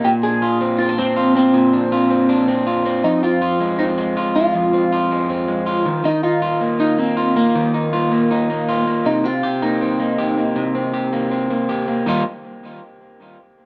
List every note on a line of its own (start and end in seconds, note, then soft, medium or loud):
0.00 0.60 A#3 medium
0.04 1.53 A#2 medium
0.04 0.09 G4 loud
0.23 0.79 D4 medium
0.23 0.58 G#4 loud
0.42 1.16 F4 medium
0.61 0.80 C4 medium
0.79 0.89 C4 medium
0.79 0.98 F4 loud
0.89 1.72 D4 medium
0.98 1.35 C4 medium
0.98 1.33 C4 loud
1.16 1.92 F4 medium
1.35 2.10 C4 medium
1.35 2.82 C4 loud
1.54 3.04 A#2 medium
1.73 2.28 D4 medium
1.92 2.66 F4 medium
2.10 2.47 C4 medium
2.29 3.08 D4 medium
2.48 2.85 C4 medium
2.67 3.41 F4 medium
2.85 3.23 C4 medium
3.04 4.53 F2 medium
3.04 3.21 D#4 loud
3.23 3.78 C4 medium
3.23 3.58 F4 loud
3.42 4.16 F4 medium
3.60 3.97 G#3 medium
3.79 4.72 C4 medium
3.79 3.84 D#4 medium
3.98 4.35 G#3 medium
3.98 4.34 F4 loud
4.17 4.92 F4 medium
4.36 5.10 G#3 medium
4.36 5.81 F4 loud
4.55 5.89 F2 medium
4.73 5.28 C4 medium
4.92 5.66 F4 medium
5.11 5.47 G#3 medium
5.30 5.89 C4 medium
5.48 5.89 G#3 medium
5.66 6.07 F4 medium
5.86 6.03 D#3 medium
6.04 7.55 D#3 medium
6.04 6.23 D#4 loud
6.23 6.79 D#4 medium
6.23 6.58 F4 medium
6.42 7.16 F4 medium
6.61 6.98 A#3 medium
6.80 7.74 D#4 medium
6.80 6.99 D#4 medium
6.98 7.35 A#3 medium
6.98 7.36 C4 medium
7.17 7.92 F4 medium
7.36 8.11 A#3 medium
7.36 8.83 A#3 medium
7.55 9.05 D#3 medium
7.74 8.30 D#4 medium
7.93 8.67 F4 medium
8.12 8.49 A#3 medium
8.31 9.24 D#4 medium
8.50 8.87 A#3 medium
8.68 9.09 F4 medium
8.87 9.27 A#3 medium
9.05 10.55 C3 medium
9.05 9.26 D#4 medium
9.24 9.80 C4 medium
9.24 9.62 F4 medium
9.43 10.18 G4 medium
9.62 9.99 A#3 medium
9.62 11.65 D#4 medium
9.81 10.74 C4 medium
10.00 10.37 A#3 medium
10.18 10.93 G4 medium
10.37 11.12 A#3 medium
10.56 12.06 C3 medium
10.75 11.30 C4 medium
10.94 11.69 G4 medium
11.13 11.50 A#3 medium
11.31 12.08 C4 medium
11.50 11.87 A#3 medium
11.69 12.08 G4 medium
11.88 12.07 A#3 medium
12.06 12.22 D#3 medium
12.06 12.22 G3 medium
12.06 12.22 A#3 medium
12.06 12.23 D#4 medium
12.06 12.23 F4 medium